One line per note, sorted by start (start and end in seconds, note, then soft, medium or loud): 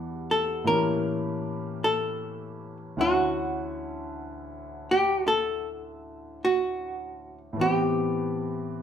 0.00 0.67 E2 soft
0.00 0.64 E3 soft
0.00 0.67 G3 soft
0.00 0.68 D4 soft
0.00 0.37 G4 medium
0.00 0.68 F#5 medium
0.31 0.65 A4 medium
0.64 2.97 A2 medium
0.64 2.98 E3 soft
0.64 2.98 A#3 soft
0.64 2.96 C#4 soft
0.64 1.84 A#4 medium
0.69 3.00 G4 medium
1.84 2.77 A4 medium
2.97 7.59 D2 soft
2.97 7.59 D3 soft
2.97 7.59 C#4 soft
2.97 7.60 E4 soft
2.97 7.60 F#5 medium
3.01 4.99 F#4 medium
4.91 5.27 G4 medium
5.28 6.40 A4 medium
6.45 7.38 F#4 medium
7.53 8.82 A2 medium
7.53 8.82 E3 soft
7.59 8.82 B3 soft
7.59 8.82 C4 soft
7.59 8.82 G4 medium
7.64 8.82 G4 medium